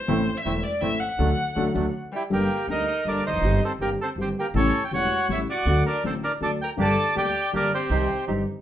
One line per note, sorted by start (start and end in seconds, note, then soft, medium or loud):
0.00 0.39 C5 loud
0.07 0.24 A1 medium
0.07 0.23 A2 medium
0.07 0.24 E3 medium
0.07 0.23 A3 medium
0.07 0.24 A3 medium
0.07 0.23 C4 medium
0.07 0.24 C4 medium
0.07 0.23 E4 medium
0.07 0.24 A4 medium
0.37 0.65 E5 medium
0.45 0.60 E1 medium
0.45 0.61 E1 medium
0.45 0.61 E2 medium
0.45 0.61 E3 soft
0.45 0.60 A3 soft
0.45 0.61 A3 soft
0.45 0.60 C4 soft
0.45 0.61 C4 soft
0.45 0.60 E4 medium
0.45 0.61 A4 medium
0.63 0.82 D5 medium
0.81 0.97 A1 medium
0.81 0.98 A2 medium
0.81 0.97 E3 soft
0.81 0.97 A3 soft
0.81 0.97 C4 soft
0.81 0.98 C4 soft
0.81 0.97 E4 medium
0.81 0.98 A4 medium
0.81 1.01 E5 loud
0.99 1.93 F#5 loud
1.18 1.33 D2 medium
1.18 1.31 D3 medium
1.18 1.30 F#3 medium
1.18 1.31 F#3 medium
1.18 1.30 A3 medium
1.18 1.31 A3 medium
1.18 1.30 D4 loud
1.55 1.70 D2 medium
1.55 1.68 D3 medium
1.55 1.67 F#3 medium
1.55 1.69 F#3 medium
1.55 1.68 A3 medium
1.55 1.67 D4 medium
1.74 1.89 D2 medium
1.74 1.86 D3 medium
1.74 1.86 F#3 medium
1.74 1.87 F#3 medium
1.74 1.86 A3 medium
1.74 1.87 A3 medium
1.74 1.86 D4 medium
2.12 2.21 G3 medium
2.12 2.23 E4 medium
2.12 2.23 G4 medium
2.30 2.46 G1 medium
2.30 2.47 G1 medium
2.30 2.46 G2 medium
2.30 2.46 G3 medium
2.30 2.46 A#3 medium
2.30 2.67 A#3 medium
2.30 2.46 D4 medium
2.30 2.67 G4 medium
2.30 2.46 A4 medium
2.30 2.67 A#4 medium
2.67 2.83 D2 medium
2.67 2.84 D2 medium
2.67 2.84 D3 soft
2.67 2.84 G3 soft
2.67 2.84 A#3 soft
2.67 2.84 D4 soft
2.67 3.03 D#4 medium
2.67 2.84 A4 medium
2.67 3.04 A#4 medium
2.71 3.08 D#5 medium
3.05 3.21 G1 medium
3.05 3.22 G2 medium
3.05 3.21 G3 soft
3.05 3.21 A#3 soft
3.05 3.21 D4 soft
3.05 3.21 A4 soft
3.05 3.24 A#4 medium
3.05 3.24 D5 medium
3.09 3.25 D4 medium
3.26 3.32 E1 soft
3.26 3.61 D#4 medium
3.26 3.60 C5 medium
3.26 3.64 D#5 medium
3.30 3.37 F1 medium
3.30 3.34 E2 soft
3.35 3.41 F#1 medium
3.35 3.39 F2 medium
3.39 3.58 G1 medium
3.39 3.43 F#2 medium
3.44 3.59 G1 medium
3.44 3.59 G2 medium
3.44 3.59 D#3 medium
3.44 3.59 G3 medium
3.44 3.59 C4 medium
3.44 3.60 G4 medium
3.65 3.73 C4 medium
3.65 3.72 A4 medium
3.65 3.73 C5 medium
3.79 3.95 G1 medium
3.79 3.96 G1 soft
3.79 3.96 G2 medium
3.79 3.96 D#3 soft
3.79 3.96 G3 soft
3.79 3.90 A#3 medium
3.79 3.96 C4 soft
3.79 3.89 G4 medium
3.79 3.96 G4 medium
3.79 3.90 A#4 medium
4.01 4.11 C4 medium
4.01 4.09 A4 medium
4.01 4.10 C5 medium
4.16 4.32 G1 medium
4.16 4.33 G1 medium
4.16 4.33 G2 medium
4.16 4.33 D#3 soft
4.16 4.33 G3 soft
4.16 4.33 C4 soft
4.16 4.33 G4 soft
4.21 4.28 C4 medium
4.21 4.29 G4 medium
4.21 4.29 C5 medium
4.39 4.47 A#3 medium
4.39 4.47 G4 medium
4.39 4.47 A#4 medium
4.54 4.70 A1 medium
4.54 4.70 A2 medium
4.54 4.70 C#3 medium
4.54 4.70 G3 medium
4.54 4.70 A3 medium
4.54 4.84 C#4 medium
4.54 4.70 E4 medium
4.54 4.83 A4 medium
4.54 4.84 C#5 loud
4.85 4.92 G4 medium
4.85 4.91 G5 medium
4.91 5.07 E1 medium
4.91 5.08 E1 medium
4.91 5.08 E2 medium
4.91 5.07 C#3 soft
4.91 5.07 G3 soft
4.91 5.08 A3 soft
4.91 5.08 E4 soft
4.91 5.28 F#4 medium
4.91 5.27 C#5 medium
4.91 5.28 F#5 loud
5.28 5.44 A1 medium
5.28 5.45 A1 medium
5.28 5.45 A2 medium
5.28 5.44 C#3 soft
5.28 5.45 G3 soft
5.28 5.45 A3 soft
5.28 5.45 E4 medium
5.28 5.39 E4 medium
5.28 5.38 C#5 medium
5.32 5.40 E5 medium
5.49 5.83 F#4 medium
5.49 5.83 D5 medium
5.49 5.84 F#5 medium
5.66 5.82 D2 medium
5.66 5.82 D3 medium
5.66 5.82 F#3 medium
5.66 5.82 A3 medium
5.66 5.82 F#4 medium
5.86 6.03 D4 medium
5.86 6.03 A#4 medium
5.86 6.04 D5 medium
6.04 6.19 A1 medium
6.04 6.20 A1 medium
6.04 6.20 A2 soft
6.04 6.20 D3 soft
6.04 6.20 F#3 soft
6.04 6.20 A3 soft
6.04 6.13 C4 medium
6.04 6.20 F#4 soft
6.04 6.14 A4 medium
6.04 6.14 C5 medium
6.23 6.32 D4 medium
6.23 6.32 A#4 medium
6.23 6.32 D5 medium
6.41 6.57 D2 medium
6.41 6.57 D2 soft
6.41 6.57 D3 medium
6.41 6.57 F#3 soft
6.41 6.57 A3 soft
6.41 6.52 D4 medium
6.41 6.57 F#4 soft
6.41 6.50 A4 medium
6.41 6.51 D5 medium
6.62 6.71 A#4 medium
6.62 6.70 G5 medium
6.62 6.71 A#5 medium
6.77 6.93 G1 medium
6.77 6.94 G1 medium
6.77 6.94 G2 medium
6.77 6.94 D3 medium
6.77 6.94 G3 medium
6.77 6.94 A#3 medium
6.77 6.94 D4 medium
6.77 6.94 G4 medium
6.77 7.15 A4 medium
6.81 7.15 D5 medium
6.81 7.15 A5 loud
7.15 7.31 D2 soft
7.15 7.32 D2 medium
7.15 7.31 D3 soft
7.15 7.31 G3 soft
7.15 7.31 A#3 soft
7.15 7.32 A#3 soft
7.15 7.31 D4 soft
7.15 7.31 G4 soft
7.15 7.32 G4 soft
7.15 7.52 G4 medium
7.15 7.52 D5 medium
7.15 7.52 G5 medium
7.52 7.69 G1 medium
7.52 7.69 G2 medium
7.52 7.69 D3 soft
7.52 7.69 G3 soft
7.52 7.69 A#3 soft
7.52 7.68 D4 soft
7.52 7.69 G4 soft
7.52 7.69 G4 medium
7.52 7.72 A#4 medium
7.52 7.72 D5 medium
7.57 7.72 D4 medium
7.74 8.25 C4 medium
7.74 8.25 G4 medium
7.74 8.25 C5 medium
7.90 8.06 C2 medium
7.90 8.07 C2 medium
7.90 8.06 C3 medium
7.90 8.06 D#3 medium
7.90 8.07 G3 medium
7.90 8.06 C4 medium
7.90 8.07 C4 medium
7.90 8.06 D#4 medium
7.90 8.06 G4 medium
8.27 8.43 G1 medium
8.27 8.44 G1 medium
8.27 8.44 G2 medium
8.27 8.44 D#3 soft
8.27 8.44 G3 soft
8.27 8.43 C4 soft
8.27 8.44 C4 soft
8.27 8.43 D#4 soft
8.27 8.43 G4 medium
8.27 8.44 G4 soft